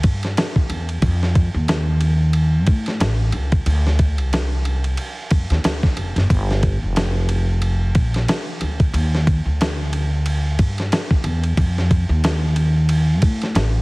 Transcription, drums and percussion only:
0.03 kick medium
0.03 ride medium
0.23 snare soft
0.23 ride soft
0.37 snare loud
0.37 hi-hat pedal soft
0.37 ride medium
0.56 kick medium
0.70 ride medium
0.89 ride soft
1.02 kick loud
1.02 ride medium
1.23 snare soft
1.35 kick medium
1.35 ride soft
1.68 snare loud
1.68 hi-hat pedal soft
1.68 ride medium
2.01 ride medium
2.33 ride medium
2.67 kick medium
2.67 ride medium
2.86 snare soft
2.86 ride soft
3.00 snare loud
3.00 hi-hat pedal soft
3.00 ride medium
3.32 ride medium
3.52 kick medium
3.52 ride soft
3.66 ride medium
3.87 snare soft
3.99 kick medium
3.99 ride medium
4.18 ride soft
4.33 snare loud
4.33 hi-hat pedal soft
4.33 ride medium
4.65 ride medium
4.84 ride soft
4.97 ride medium
5.30 kick medium
5.30 ride medium
5.50 snare soft
5.50 ride soft
5.64 snare loud
5.64 hi-hat pedal soft
5.64 ride medium
5.83 kick medium
5.83 snare soft
5.97 ride medium
6.16 snare soft
6.16 ride soft
6.30 kick medium
6.30 ride medium
6.51 snare soft
6.63 kick medium
6.63 ride soft
6.96 snare loud
6.96 hi-hat pedal soft
6.96 ride medium
7.29 ride medium
7.62 ride medium
7.95 kick medium
7.95 ride medium
8.14 snare soft
8.14 ride soft
8.28 snare loud
8.28 hi-hat pedal soft
8.28 ride medium
8.61 ride medium
8.80 kick medium
8.80 ride soft
8.94 ride medium
9.15 snare soft
9.27 kick medium
9.27 ride medium
9.61 snare loud
9.61 hi-hat pedal soft
9.61 ride medium
9.93 ride medium
10.26 ride medium
10.59 kick medium
10.59 ride medium
10.78 snare soft
10.78 ride soft
10.92 snare loud
10.92 hi-hat pedal soft
10.92 ride medium
11.11 kick medium
11.24 ride medium
11.44 ride soft
11.57 kick loud
11.57 ride medium
11.78 snare soft
11.91 kick medium
11.91 ride medium
12.24 snare loud
12.24 hi-hat pedal soft
12.24 ride medium
12.56 ride medium
12.89 ride medium
13.22 kick medium
13.22 ride medium
13.42 snare soft
13.42 ride soft
13.55 snare loud
13.55 hi-hat pedal soft
13.55 ride medium

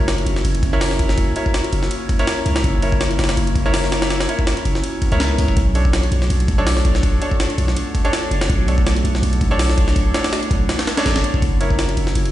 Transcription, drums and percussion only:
0.08 snare loud
0.08 ride medium
0.18 ride soft
0.26 ride medium
0.36 snare soft
0.45 ride medium
0.55 ride soft
0.63 kick medium
0.63 ride medium
0.81 snare loud
0.81 open hi-hat medium
0.91 snare medium
0.99 kick loud
0.99 ride medium
1.09 snare medium
1.18 kick loud
1.18 ride medium
1.36 ride medium
1.46 kick loud
1.54 snare loud
1.54 ride medium
1.64 ride soft
1.73 ride medium
1.83 snare soft
1.91 ride medium
2.09 kick loud
2.09 ride medium
2.19 ride soft
2.27 snare loud
2.27 ride loud
2.46 ride medium
2.56 snare loud
2.56 ride medium
2.64 kick loud
2.64 ride medium
2.82 ride medium
2.92 kick loud
3.01 snare loud
3.01 ride medium
3.11 ride soft
3.19 snare medium
3.19 ride medium
3.24 snare medium
3.24 ride medium
3.29 snare loud
3.29 ride medium
3.37 ride medium
3.47 ride soft
3.56 kick medium
3.56 ride medium
3.74 snare loud
3.74 open hi-hat medium
3.84 snare medium
3.92 snare loud
3.92 ride medium
4.02 snare loud
4.02 ride medium
4.10 snare loud
4.10 ride medium
4.20 snare loud
4.20 ride medium
4.29 ride medium
4.39 kick loud
4.47 snare loud
4.47 ride medium
4.57 ride soft
4.65 ride medium
4.75 snare soft
4.84 ride medium
5.02 kick loud
5.02 ride medium
5.12 ride soft
5.20 snare loud
5.20 ride medium
5.38 ride medium
5.48 kick medium
5.57 kick loud
5.57 ride medium
5.75 ride medium
5.85 kick loud
5.93 snare loud
5.93 ride medium
6.03 ride soft
6.12 ride medium
6.22 snare soft
6.30 ride medium
6.40 ride soft
6.48 kick loud
6.48 ride medium
6.67 snare loud
6.67 open hi-hat medium
6.77 snare medium
6.85 kick loud
6.85 ride medium
6.95 snare medium
7.03 kick loud
7.03 ride medium
7.22 ride medium
7.32 kick loud
7.40 snare loud
7.40 ride medium
7.50 ride soft
7.58 ride medium
7.68 snare soft
7.76 ride medium
7.95 kick loud
7.95 ride medium
8.05 ride soft
8.13 snare loud
8.13 ride medium
8.31 ride medium
8.41 snare loud
8.41 ride medium
8.50 kick loud
8.50 ride medium
8.68 ride medium
8.78 kick loud
8.87 snare loud
8.87 ride medium
8.96 ride soft
9.05 ride medium
9.15 snare medium
9.23 ride medium
9.33 ride soft
9.41 kick loud
9.41 ride medium
9.59 snare loud
9.59 open hi-hat medium
9.69 snare medium
9.78 kick loud
9.78 ride medium
9.88 snare medium
9.96 kick loud
9.96 ride medium
10.14 snare loud
10.14 ride medium
10.24 snare loud
10.24 ride medium
10.33 snare loud
10.33 ride medium
10.43 ride soft
10.51 kick loud
10.51 ride medium
10.69 snare loud
10.69 ride medium
10.79 snare loud
10.79 ride medium
10.87 snare loud
10.87 ride medium
10.97 snare loud
10.97 ride medium
11.06 snare loud
11.06 ride medium
11.16 snare loud
11.16 ride medium
11.24 ride medium
11.34 kick loud
11.42 kick loud
11.42 ride medium
11.61 ride medium
11.71 kick loud
11.79 snare loud
11.79 ride medium
11.89 ride soft
11.97 ride medium
12.07 snare soft
12.15 ride medium
12.25 ride soft

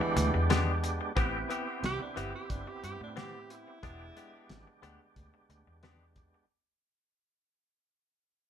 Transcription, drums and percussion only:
0.17 closed hi-hat medium
0.50 snare loud
0.50 closed hi-hat medium
0.84 closed hi-hat medium
1.17 kick loud
1.17 closed hi-hat medium
1.50 closed hi-hat medium
1.84 snare loud
1.84 closed hi-hat medium
2.17 closed hi-hat medium
2.50 kick medium
2.50 closed hi-hat medium
2.84 closed hi-hat medium
3.17 snare loud
3.17 closed hi-hat medium
3.50 closed hi-hat medium
3.83 kick loud
3.83 closed hi-hat medium
4.17 closed hi-hat medium
4.49 snare loud
4.49 closed hi-hat medium
4.83 closed hi-hat medium
5.16 kick medium
5.16 closed hi-hat medium
5.50 closed hi-hat medium
5.83 snare loud
5.83 closed hi-hat medium
6.16 kick medium
6.16 closed hi-hat medium

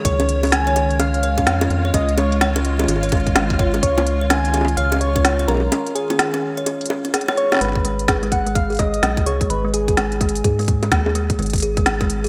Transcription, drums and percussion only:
0.05 kick loud
0.05 closed hi-hat medium
0.20 closed hi-hat soft
0.20 high bongo medium
0.29 closed hi-hat medium
0.43 closed hi-hat soft
0.43 high bongo medium
0.45 closed hi-hat soft
0.47 closed hi-hat soft
0.49 closed hi-hat soft
0.51 snare loud
0.51 closed hi-hat soft
0.52 closed hi-hat medium
0.67 closed hi-hat soft
0.76 closed hi-hat medium
0.76 high bongo medium
0.91 closed hi-hat soft
1.00 closed hi-hat medium
1.00 high bongo medium
1.14 closed hi-hat soft
1.23 closed hi-hat medium
1.38 kick medium
1.38 closed hi-hat soft
1.38 high bongo soft
1.47 snare loud
1.47 closed hi-hat medium
1.61 closed hi-hat soft
1.61 high bongo medium
1.70 closed hi-hat soft
1.94 kick loud
1.94 closed hi-hat medium
1.94 high bongo medium
2.09 closed hi-hat soft
2.18 closed hi-hat medium
2.18 high bongo medium
2.32 closed hi-hat soft
2.41 snare loud
2.41 closed hi-hat medium
2.56 closed hi-hat soft
2.56 high bongo medium
2.65 closed hi-hat medium
2.79 closed hi-hat soft
2.79 high bongo medium
2.84 high bongo medium
2.88 closed hi-hat medium
2.88 high bongo medium
2.96 high bongo soft
3.03 closed hi-hat soft
3.09 kick loud
3.09 closed hi-hat soft
3.12 closed hi-hat medium
3.12 high bongo medium
3.17 closed hi-hat soft
3.20 closed hi-hat soft
3.27 kick medium
3.27 closed hi-hat soft
3.36 snare loud
3.36 closed hi-hat medium
3.36 high bongo medium
3.50 kick loud
3.50 closed hi-hat soft
3.59 kick loud
3.59 closed hi-hat soft
3.74 closed hi-hat soft
3.74 high bongo medium
3.83 kick loud
3.83 closed hi-hat loud
3.98 closed hi-hat soft
3.98 high bongo medium
4.07 closed hi-hat medium
4.30 snare loud
4.30 closed hi-hat medium
4.30 high bongo medium
4.45 closed hi-hat soft
4.54 closed hi-hat medium
4.54 high bongo soft
4.57 high bongo soft
4.61 high bongo medium
4.65 closed hi-hat soft
4.65 high bongo medium
4.77 closed hi-hat medium
4.92 closed hi-hat soft
4.92 high bongo medium
4.94 high bongo soft
4.96 high bongo soft
4.99 closed hi-hat medium
4.99 high bongo soft
5.01 high bongo soft
5.05 high bongo soft
5.08 high bongo soft
5.12 kick medium
5.12 closed hi-hat soft
5.12 high bongo soft
5.25 snare loud
5.25 closed hi-hat medium
5.39 closed hi-hat soft
5.48 closed hi-hat soft
5.48 high bongo soft
5.51 high bongo soft
5.54 high bongo soft
5.57 high bongo soft
5.60 high bongo soft
5.72 closed hi-hat loud
5.72 high bongo medium
5.87 closed hi-hat soft
5.96 closed hi-hat medium
6.10 closed hi-hat soft
6.10 high bongo medium
6.19 snare loud
6.19 closed hi-hat loud
6.34 closed hi-hat soft
6.57 closed hi-hat soft
6.66 closed hi-hat medium
6.66 high bongo medium
6.81 closed hi-hat soft
6.86 closed hi-hat medium
6.90 high bongo medium
7.05 closed hi-hat soft
7.14 snare medium
7.14 closed hi-hat loud
7.21 closed hi-hat soft
7.29 snare medium
7.29 high bongo medium
7.37 closed hi-hat soft
7.52 snare medium
7.52 closed hi-hat soft
7.52 high bongo medium
7.54 snare medium
7.57 snare medium
7.59 snare soft
7.61 snare soft
7.61 closed hi-hat medium
7.65 snare soft
7.68 snare soft
7.72 kick loud
7.72 snare soft
7.85 closed hi-hat medium
7.99 closed hi-hat medium
8.08 kick loud
8.08 snare loud
8.08 closed hi-hat medium
8.23 closed hi-hat soft
8.32 kick loud
8.32 closed hi-hat medium
8.47 closed hi-hat medium
8.55 kick loud
8.55 closed hi-hat medium
8.55 high bongo soft
8.70 closed hi-hat soft
8.72 closed hi-hat soft
8.75 closed hi-hat soft
8.77 kick loud
8.77 closed hi-hat soft
8.79 closed hi-hat medium
8.79 high bongo medium
8.94 closed hi-hat medium
9.03 snare loud
9.03 closed hi-hat medium
9.17 kick loud
9.17 closed hi-hat soft
9.26 closed hi-hat medium
9.41 kick loud
9.41 closed hi-hat medium
9.50 closed hi-hat medium
9.74 closed hi-hat medium
9.88 kick loud
9.88 closed hi-hat medium
9.97 snare loud
9.97 closed hi-hat medium
10.12 closed hi-hat soft
10.21 kick loud
10.21 closed hi-hat medium
10.21 high bongo soft
10.29 closed hi-hat medium
10.35 closed hi-hat medium
10.44 kick loud
10.44 closed hi-hat medium
10.59 closed hi-hat soft
10.61 closed hi-hat soft
10.63 closed hi-hat soft
10.65 closed hi-hat soft
10.66 kick loud
10.66 closed hi-hat soft
10.68 closed hi-hat medium
10.83 closed hi-hat medium
10.83 high bongo medium
10.92 kick loud
10.92 snare loud
10.92 closed hi-hat medium
11.06 high bongo medium
11.15 closed hi-hat medium
11.30 kick loud
11.30 closed hi-hat medium
11.39 closed hi-hat soft
11.42 closed hi-hat soft
11.46 closed hi-hat soft
11.50 kick loud
11.50 closed hi-hat soft
11.53 closed hi-hat medium
11.56 closed hi-hat medium
11.58 closed hi-hat medium
11.60 closed hi-hat medium
11.62 closed hi-hat medium
11.77 kick loud
11.77 closed hi-hat medium
11.86 snare loud
11.86 closed hi-hat medium
12.01 kick loud
12.01 closed hi-hat soft
12.10 closed hi-hat medium
12.24 closed hi-hat medium

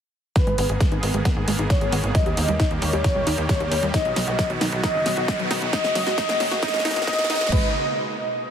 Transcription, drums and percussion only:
0.36 kick loud
0.36 snare soft
0.36 closed hi-hat medium
0.47 closed hi-hat soft
0.58 open hi-hat medium
0.69 closed hi-hat soft
0.80 kick loud
0.80 snare soft
0.80 closed hi-hat medium
0.92 closed hi-hat soft
1.03 open hi-hat loud
1.14 closed hi-hat medium
1.25 kick loud
1.25 snare soft
1.25 closed hi-hat medium
1.48 open hi-hat loud
1.59 closed hi-hat medium
1.70 kick loud
1.70 snare medium
1.70 closed hi-hat medium
1.81 closed hi-hat soft
1.92 open hi-hat loud
2.04 closed hi-hat medium
2.15 kick loud
2.15 snare medium
2.15 closed hi-hat medium
2.26 closed hi-hat soft
2.37 open hi-hat loud
2.48 closed hi-hat medium
2.60 kick loud
2.60 snare medium
2.60 closed hi-hat medium
2.71 closed hi-hat soft
2.82 open hi-hat loud
2.93 closed hi-hat soft
3.04 kick loud
3.04 snare medium
3.04 closed hi-hat medium
3.27 open hi-hat loud
3.49 kick loud
3.49 snare medium
3.49 closed hi-hat medium
3.60 closed hi-hat soft
3.72 open hi-hat loud
3.83 closed hi-hat medium
3.94 kick loud
3.94 snare medium
3.94 closed hi-hat medium
4.05 closed hi-hat soft
4.16 snare medium
4.16 open hi-hat loud
4.28 closed hi-hat medium
4.39 kick loud
4.39 snare medium
4.39 closed hi-hat medium
4.50 closed hi-hat soft
4.61 snare medium
4.61 open hi-hat loud
4.72 closed hi-hat soft
4.84 kick loud
4.84 snare medium
4.84 closed hi-hat medium
5.06 snare medium
5.06 open hi-hat loud
5.17 closed hi-hat soft
5.28 kick loud
5.28 snare medium
5.28 closed hi-hat medium
5.39 closed hi-hat soft
5.51 snare medium
5.51 open hi-hat loud
5.62 closed hi-hat medium
5.73 kick loud
5.73 snare medium
5.73 closed hi-hat medium
5.84 snare medium
5.84 closed hi-hat soft
5.95 snare medium
5.95 open hi-hat loud
6.07 snare medium
6.07 closed hi-hat soft
6.18 kick loud
6.18 snare loud
6.18 closed hi-hat medium
6.29 snare medium
6.29 closed hi-hat soft
6.40 snare loud
6.40 open hi-hat loud
6.51 snare medium
6.63 kick loud
6.63 snare loud
6.63 closed hi-hat medium
6.68 snare medium
6.74 snare medium
6.79 snare medium
6.85 snare loud
6.85 open hi-hat loud
6.91 snare loud
6.96 snare medium
6.96 closed hi-hat soft
7.02 snare loud
7.07 kick loud
7.07 snare loud
7.07 closed hi-hat medium
7.13 snare medium
7.19 snare medium
7.19 closed hi-hat soft
7.24 snare medium
7.30 snare loud
7.30 open hi-hat loud
7.35 snare loud
7.41 snare loud
7.41 closed hi-hat medium
7.47 snare loud
7.52 kick loud
7.52 crash medium

